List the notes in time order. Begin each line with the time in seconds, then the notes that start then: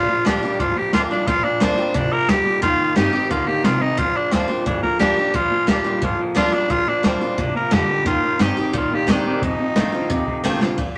Already playing: A#2 F4
0.09 A#2 F3, muted upright bass stroke
0.25 D2 A#2 F3 G3 A#3 D4 F4 G4, snare
0.43 A#2 G3 D4 F4
0.59 G#1 F2 A#2 F3 F4, kick
0.76 A#2 F3 G4
0.93 D2 A#2 F3 G3 A#3 D4 F4, snare
1.11 A#2 G3 D4 F4
1.27 A#1 A#2 F3 F4, kick
1.44 A#2 F3 D4
1.60 D2 A#2 F3 G3 A#3 C4 D4 F4, snare
1.77 A#2 G3 D4 F4
1.94 G#1 A#2 C3 F3 D4, kick
2.12 A#2 F3 A#4, muted upright bass stroke
2.28 D2 A#2 D3 G3 G4, snare
2.46 A#2 G3, muted upright bass stroke
2.62 D#2 D#3 A#3 F4, kick
2.79 D#3 A#3
2.96 G2 D#3 A#3 C4 D#4 G4, snare
3.13 D#3 C4 D#4 G4
3.29 C2 D3 D#3 A#3 F4, kick
3.47 D#3 A#3 G4
3.63 A1 C3 D#3 C4 F4, snare
3.80 D#3 C4 D#4, muted upright bass stroke
3.97 A#1 A#2 F3 F4, kick
4.14 A#2 F3 D4, muted upright bass stroke
4.31 D2 A#2 F3 G3 A#3 C4 D4 F4, snare
4.48 A#2 G3 D4 F4
4.66 G#1 F2 A#2 F3 D4, kick
4.83 A#2 F3 A#4, muted upright bass stroke, kick
4.99 D2 A#2 F3 G3 A#3 D4 F4 G4, snare
5.17 A#2 G3 D4 F4
5.34 A#1 A#2 F3 F4, kick, open hi-hat
5.50 A#2 F3, muted upright bass stroke
5.67 D2 A#2 F3 G3 A#3 D4 F4 G4, snare
5.84 A#2 G3 D4 F4
6.02 G#1 F2 A#2 F3 F4, kick
6.19 A#2 F3
6.35 D2 A#2 F3 G3 A#3 D4 F4, snare
6.52 A#2 G3 D4 F4
6.69 A#1 A#2 F3 F4, kick
6.87 A#2 F3 D4, muted upright bass stroke
7.03 D2 A#2 F3 G3 A#3 C4 D4 F4, snare
7.21 A#2 G3 D4 F4
7.38 G#1 A#2 C3 F3 D4, kick
7.54 A#2 F3 A#4, muted upright bass stroke
7.71 F2 A#2 D3 G3 G4, snare
7.89 A#2 G3
8.05 D#2 D#3 A#3 F4, kick
8.23 D#3 A#3, muted upright bass stroke
8.39 G2 D#3 A#3 C4 D#4 G4, snare
8.57 D#3 C4 D#4 G4, muted upright bass stroke
8.73 C2 A#2 D#3 A#3 F4, kick, open hi-hat
8.90 D#3 A#3, muted upright bass stroke
8.94 G4
9.07 D#2 D#3 A#3 C4 D#4 G4, snare
9.11 D4
9.26 D#3 C4 D4
9.42 F1 F2 C3 D#4, kick, open hi-hat
9.59 F2 C3
9.76 A1 F2 D3 D#3 A3 C4 F4, snare
9.92 F2 D3 C4 F4, muted upright bass stroke
10.10 D#2 F2 C3, kick
10.27 F2 C3, kick
10.44 A1 F2 D3 D#3 A3 C4 F4, snare
10.61 F2 D3 C4 F4, muted upright bass stroke, snare
10.78 A#1 A#2, kick, ride